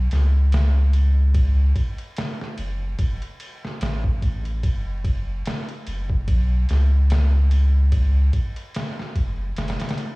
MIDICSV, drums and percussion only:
0, 0, Header, 1, 2, 480
1, 0, Start_track
1, 0, Key_signature, 3, "minor"
1, 0, Tempo, 821918
1, 787, Time_signature, 4, 2, 24, 8
1, 5931, End_track
2, 0, Start_track
2, 0, Title_t, "Drums"
2, 65, Note_on_c, 9, 51, 69
2, 75, Note_on_c, 9, 38, 54
2, 123, Note_off_c, 9, 51, 0
2, 134, Note_off_c, 9, 38, 0
2, 305, Note_on_c, 9, 51, 84
2, 316, Note_on_c, 9, 38, 105
2, 364, Note_off_c, 9, 51, 0
2, 374, Note_off_c, 9, 38, 0
2, 545, Note_on_c, 9, 51, 62
2, 604, Note_off_c, 9, 51, 0
2, 785, Note_on_c, 9, 36, 108
2, 785, Note_on_c, 9, 51, 79
2, 844, Note_off_c, 9, 36, 0
2, 844, Note_off_c, 9, 51, 0
2, 1025, Note_on_c, 9, 36, 87
2, 1026, Note_on_c, 9, 51, 64
2, 1084, Note_off_c, 9, 36, 0
2, 1084, Note_off_c, 9, 51, 0
2, 1159, Note_on_c, 9, 51, 41
2, 1217, Note_off_c, 9, 51, 0
2, 1265, Note_on_c, 9, 51, 79
2, 1275, Note_on_c, 9, 38, 104
2, 1323, Note_off_c, 9, 51, 0
2, 1334, Note_off_c, 9, 38, 0
2, 1410, Note_on_c, 9, 38, 44
2, 1468, Note_off_c, 9, 38, 0
2, 1505, Note_on_c, 9, 51, 64
2, 1563, Note_off_c, 9, 51, 0
2, 1744, Note_on_c, 9, 51, 83
2, 1745, Note_on_c, 9, 36, 113
2, 1802, Note_off_c, 9, 51, 0
2, 1803, Note_off_c, 9, 36, 0
2, 1880, Note_on_c, 9, 51, 41
2, 1938, Note_off_c, 9, 51, 0
2, 1985, Note_on_c, 9, 51, 66
2, 2043, Note_off_c, 9, 51, 0
2, 2129, Note_on_c, 9, 38, 48
2, 2188, Note_off_c, 9, 38, 0
2, 2225, Note_on_c, 9, 51, 86
2, 2236, Note_on_c, 9, 38, 108
2, 2283, Note_off_c, 9, 51, 0
2, 2294, Note_off_c, 9, 38, 0
2, 2360, Note_on_c, 9, 36, 90
2, 2418, Note_off_c, 9, 36, 0
2, 2466, Note_on_c, 9, 36, 87
2, 2467, Note_on_c, 9, 51, 62
2, 2524, Note_off_c, 9, 36, 0
2, 2526, Note_off_c, 9, 51, 0
2, 2600, Note_on_c, 9, 51, 39
2, 2659, Note_off_c, 9, 51, 0
2, 2706, Note_on_c, 9, 36, 108
2, 2706, Note_on_c, 9, 51, 83
2, 2764, Note_off_c, 9, 36, 0
2, 2765, Note_off_c, 9, 51, 0
2, 2946, Note_on_c, 9, 36, 94
2, 2946, Note_on_c, 9, 51, 64
2, 3004, Note_off_c, 9, 36, 0
2, 3005, Note_off_c, 9, 51, 0
2, 3186, Note_on_c, 9, 51, 82
2, 3196, Note_on_c, 9, 38, 107
2, 3244, Note_off_c, 9, 51, 0
2, 3255, Note_off_c, 9, 38, 0
2, 3321, Note_on_c, 9, 51, 42
2, 3379, Note_off_c, 9, 51, 0
2, 3426, Note_on_c, 9, 51, 65
2, 3484, Note_off_c, 9, 51, 0
2, 3560, Note_on_c, 9, 36, 90
2, 3618, Note_off_c, 9, 36, 0
2, 3666, Note_on_c, 9, 36, 106
2, 3666, Note_on_c, 9, 51, 84
2, 3724, Note_off_c, 9, 36, 0
2, 3724, Note_off_c, 9, 51, 0
2, 3906, Note_on_c, 9, 51, 73
2, 3916, Note_on_c, 9, 38, 52
2, 3964, Note_off_c, 9, 51, 0
2, 3974, Note_off_c, 9, 38, 0
2, 4146, Note_on_c, 9, 51, 81
2, 4157, Note_on_c, 9, 38, 103
2, 4205, Note_off_c, 9, 51, 0
2, 4215, Note_off_c, 9, 38, 0
2, 4386, Note_on_c, 9, 51, 64
2, 4444, Note_off_c, 9, 51, 0
2, 4625, Note_on_c, 9, 51, 86
2, 4626, Note_on_c, 9, 36, 105
2, 4683, Note_off_c, 9, 51, 0
2, 4684, Note_off_c, 9, 36, 0
2, 4866, Note_on_c, 9, 36, 88
2, 4866, Note_on_c, 9, 51, 61
2, 4924, Note_off_c, 9, 36, 0
2, 4924, Note_off_c, 9, 51, 0
2, 5000, Note_on_c, 9, 51, 43
2, 5059, Note_off_c, 9, 51, 0
2, 5107, Note_on_c, 9, 51, 79
2, 5117, Note_on_c, 9, 38, 100
2, 5165, Note_off_c, 9, 51, 0
2, 5176, Note_off_c, 9, 38, 0
2, 5252, Note_on_c, 9, 38, 47
2, 5311, Note_off_c, 9, 38, 0
2, 5346, Note_on_c, 9, 36, 81
2, 5347, Note_on_c, 9, 51, 58
2, 5405, Note_off_c, 9, 36, 0
2, 5405, Note_off_c, 9, 51, 0
2, 5586, Note_on_c, 9, 51, 66
2, 5596, Note_on_c, 9, 38, 88
2, 5644, Note_off_c, 9, 51, 0
2, 5653, Note_on_c, 9, 51, 67
2, 5655, Note_off_c, 9, 38, 0
2, 5664, Note_on_c, 9, 38, 85
2, 5712, Note_off_c, 9, 51, 0
2, 5721, Note_on_c, 9, 51, 68
2, 5722, Note_off_c, 9, 38, 0
2, 5732, Note_on_c, 9, 38, 86
2, 5775, Note_off_c, 9, 51, 0
2, 5775, Note_on_c, 9, 51, 60
2, 5785, Note_off_c, 9, 38, 0
2, 5785, Note_on_c, 9, 38, 85
2, 5827, Note_off_c, 9, 51, 0
2, 5827, Note_on_c, 9, 51, 60
2, 5843, Note_off_c, 9, 38, 0
2, 5885, Note_off_c, 9, 51, 0
2, 5931, End_track
0, 0, End_of_file